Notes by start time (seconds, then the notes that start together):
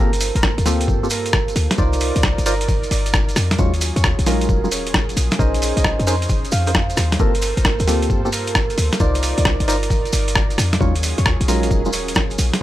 Already playing: G1 A#3 C4 F4 G#4 A4 A#4 C5
0.00 G4 A4
0.13 closed hi-hat, maracas
0.20 open hi-hat, maracas
0.35 G1 A#4, closed hi-hat, maracas
0.43 kick, cross-stick, maracas
0.58 D2, closed hi-hat, maracas
0.66 A#3 C4 F4 G4 A4, snare, open hi-hat, maracas
0.81 closed hi-hat, maracas
0.88 G2, kick, maracas
1.03 A#3 C4 F4 G4 A4, maracas
1.10 A#4, open hi-hat, maracas
1.26 closed hi-hat, maracas
1.33 kick, cross-stick, maracas
1.48 closed hi-hat, maracas
1.56 D2, open hi-hat, maracas
1.71 snare, closed hi-hat, maracas
1.78 C2 D#4 F4 A#4 C5 D5, kick, maracas
1.93 closed hi-hat, maracas
2.00 open hi-hat, maracas
2.16 C2 D5, closed hi-hat, maracas
2.23 kick, cross-stick, maracas
2.38 G1, closed hi-hat, maracas
2.46 D#4 F4 A#4 C5 D5, open hi-hat, maracas
2.61 closed hi-hat, maracas
2.68 kick, open hi-hat, maracas
2.83 closed hi-hat, maracas
2.91 G1 D5, open hi-hat, maracas
3.06 closed hi-hat, maracas
3.13 kick, cross-stick, maracas
3.29 closed hi-hat, maracas
3.36 F2, cross-stick, open hi-hat, maracas
3.51 snare, closed hi-hat, maracas
3.59 D#2 F#3 G#3 C#4 D#4 F4 G#4 C#5, kick, maracas
3.74 closed hi-hat, maracas
3.81 open hi-hat, maracas
3.96 D#2 C#5, closed hi-hat, maracas
4.04 kick, cross-stick, maracas
4.19 A#1, closed hi-hat, maracas
4.26 F#3 G#3 C#4 D#4 F4 A#4, snare, open hi-hat, maracas
4.41 closed hi-hat, maracas
4.49 D#1, kick, maracas
4.64 F#3 G#3 C#4 D#4 F4, maracas
4.72 C#5, open hi-hat, maracas
4.87 closed hi-hat, maracas
4.94 kick, cross-stick, maracas
5.09 closed hi-hat, maracas
5.17 A#1, open hi-hat, maracas
5.31 snare, closed hi-hat, maracas
5.39 A#1 C#4 D#4 G#4 A#4 C5 D#5, kick, maracas
5.54 closed hi-hat, maracas
5.62 open hi-hat, maracas
5.77 A#1 D#5, closed hi-hat, maracas
5.84 kick, cross-stick, maracas
5.99 F2, closed hi-hat, maracas
6.07 C#4 D#4 G#4 A#4 C5, open hi-hat, maracas
6.22 closed hi-hat, maracas
6.29 kick, open hi-hat, maracas
6.45 closed hi-hat, maracas
6.52 F2 F5, open hi-hat, maracas
6.67 C#4 D#4 G#4 A#4 C5, closed hi-hat, maracas
6.74 kick, cross-stick, maracas
6.90 closed hi-hat, maracas
6.97 D#2, cross-stick, open hi-hat, maracas
7.12 snare, closed hi-hat, maracas
7.19 G1 A#3 C4 F4 G4 A4 A#4, kick, maracas
7.35 closed hi-hat, maracas
7.42 open hi-hat, maracas
7.57 G1 A#4, closed hi-hat, maracas
7.65 kick, cross-stick, maracas
7.80 D2, closed hi-hat, maracas
7.87 A#3 C4 F4 G4 A4, snare, open hi-hat, maracas
8.02 closed hi-hat, maracas
8.10 G2, kick, maracas
8.25 A#3 C4 F4 G4 A4, maracas
8.32 A#4, open hi-hat, maracas
8.47 closed hi-hat, maracas
8.55 kick, cross-stick, maracas
8.70 closed hi-hat, maracas
8.78 D2, open hi-hat, maracas
8.92 snare, closed hi-hat, maracas
9.00 C2 D#4 F4 A#4 C5 D5, kick, maracas
9.15 closed hi-hat, maracas
9.23 open hi-hat, maracas
9.37 C2 D5, closed hi-hat, maracas
9.45 kick, cross-stick, maracas
9.60 G1, closed hi-hat, maracas
9.68 D#4 F4 A#4 C5 D5, open hi-hat, maracas
9.83 closed hi-hat, maracas
9.90 kick, open hi-hat, maracas
10.05 closed hi-hat, maracas
10.13 G1 D5, open hi-hat, maracas
10.28 closed hi-hat, maracas
10.35 kick, cross-stick, maracas
10.50 closed hi-hat, maracas
10.58 F2, cross-stick, open hi-hat, maracas
10.73 snare, closed hi-hat, maracas
10.80 D#2 F#3 G#3 C#4 D#4 F4 G#4 C#5, kick, maracas
10.95 closed hi-hat, maracas
11.03 open hi-hat, maracas
11.18 D#2 C#5, closed hi-hat, maracas
11.26 kick, cross-stick, maracas
11.41 A#1, closed hi-hat, maracas
11.48 F#3 G#3 C#4 D#4 F4 A#4, open hi-hat, maracas
11.63 closed hi-hat, maracas
11.71 D#1, kick, maracas
11.85 F#3 G#3 C#4 D#4 F4, maracas
11.93 C#5, open hi-hat, maracas
12.08 closed hi-hat, maracas
12.15 kick, cross-stick, maracas
12.30 closed hi-hat, maracas
12.38 A#1, open hi-hat, maracas
12.53 snare, closed hi-hat, maracas